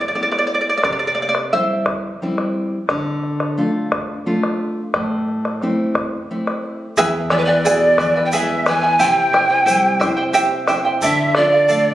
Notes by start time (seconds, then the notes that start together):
0.01 D5
0.08 D5
0.15 G#3 B3 E4 D5
0.23 D5
0.31 D5, bombo rim
0.39 D5
0.47 D5
0.54 D5
0.61 D5
0.70 D5
0.77 D5
0.84 C3 D5, bombo rim, bombo low
0.93 D5
0.99 D5
1.07 D5
1.15 D5, bombo rim
1.22 D5
1.29 D5
1.35 bombo rim
1.53 G3 C4 E4 C5 E5
1.86 bombo rim, bombo low
2.22 G3 C4 E4
2.38 bombo rim
2.89 D3, bombo rim, bombo low
3.23 bombo rim
3.40 bombo rim
3.57 A3 D4 F4
3.92 bombo rim, bombo low
4.26 A3 D4 F4
4.43 bombo rim
4.94 A2, bombo rim, bombo low
5.12 bombo rim
5.28 bombo rim
5.45 bombo rim
5.62 A3 C4 E4, bombo rim
5.95 bombo rim, bombo low
6.13 bombo rim
6.31 A3 C4 E4
6.47 bombo rim
6.64 bombo rim
6.97 E2 E4 G#4 B4 E5 G#5, bombo low, shaker
7.30 E3 E4 B4 D5 E5 G#5, bombo rim
7.38 B4
7.45 B4 D5 G#5
7.49 E4
7.65 B2 E4 G#4 B4 E5 G#5, bombo rim, shaker
7.98 E3 E4 B4 E5 G#5, bombo rim, bombo low, shaker
8.16 E4 B4 G#5
8.25 G5
8.32 G#3 E4 G#4 B4 E5 G#5, shaker
8.49 bombo rim
8.66 E3 E4 B4 E5 G#5, bombo rim, shaker
8.83 E4 B4 G#5
8.99 C3 E4 G4 C5 E5 G5, bombo low, shaker
9.33 E4 C5 E5 G5, bombo rim
9.50 E4 C5 G5
9.66 G3 E4 G4 C5 E5 G5, bombo rim, shaker
10.00 E4 C5 E5 G5, bombo rim, bombo low, shaker
10.17 E4 C5 G5
10.33 E4 G4 C5 E5 G5, shaker
10.51 bombo rim
10.68 E4 C5 E5 G5, bombo rim, shaker
10.85 E4 C5 G5
11.01 D3 A4 D5 E5, bombo low, shaker
11.35 F4 A4 D5 F5, bombo rim
11.52 D5 F5
11.69 A3 A4 D5 F5, bombo rim, shaker